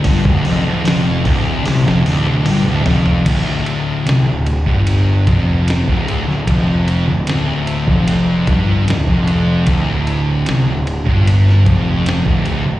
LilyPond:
<<
  \new Staff \with { instrumentName = "Distorted electric guitar" } { \clef bass \time 4/4 \key d \minor \tempo 4 = 75 g,16 d,16 f,16 d,16 f,8 d,8 c16 f,16 d,8 g,16 d,16 f,8 | d,4 c16 d,8 g,8. f,8. d,8 d,16 | f,8. d,16 d,8. f,8. g,8 d,16 f,8. | d,4 c16 d,8 g,8. f,8. d,8 d,16 | }
  \new Staff \with { instrumentName = "Distorted electric guitar" } { \clef bass \time 4/4 \key d \minor g,16 d,16 f,16 d,16 f,8 d,8 c16 f,16 d,8 g,16 d,16 f,8 | d,4 c16 d,8 g,8. f,8. d,8 d,16 | f,8. d,16 d,8. f,8. g,8 d,16 f,8. | d,4 c16 d,8 g,8. f,8. d,8 d,16 | }
  \new Staff \with { instrumentName = "Picked electric bass" } { \clef bass \time 4/4 \key d \minor g,,16 d,,16 f,,16 d,,16 f,,8 d,,8 c,16 f,,16 d,,8 g,,16 d,,16 f,,8 | d,,4 c,16 d,,8 g,,8. f,,8. d,,8 d,,16 | f,,8. d,,16 d,,8. f,,8. g,,8 d,,16 f,,8. | d,,4 c,16 d,,8 g,,8. f,,8. d,,8 d,,16 | }
  \new DrumStaff \with { instrumentName = "Drums" } \drummode { \time 4/4 <hho bd>16 bd16 hho8 <hho sn>8 <hho bd>8 <hho sn>16 sn16 hho16 tommh16 <hho toml>8 <hho tomfh>16 tomfh16 | <cymc bd cymr>8 cymr8 <cymr sn>8 cymr16 bd16 cymr8 <bd cymr>8 <cymr sn>16 bd16 cymr16 sn16 | <bd cymr>8 cymr8 <cymr sn>8 cymr16 bd16 cymr8 <bd cymr>8 <cymr sn>16 bd16 cymr8 | <bd cymr>8 cymr8 <cymr sn>8 cymr16 bd16 cymr16 sn16 <bd cymr>8 <cymr sn>16 bd16 cymr8 | }
>>